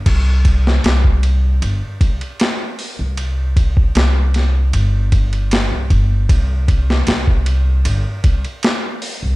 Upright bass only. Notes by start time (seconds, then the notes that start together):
0.06 C2
0.84 C2
1.62 G1
2.01 C2
2.99 C2
3.95 C2
4.73 G1
5.72 C2
5.91 G1
6.29 C2
7.07 C2
7.85 G1
8.24 C2
9.23 C2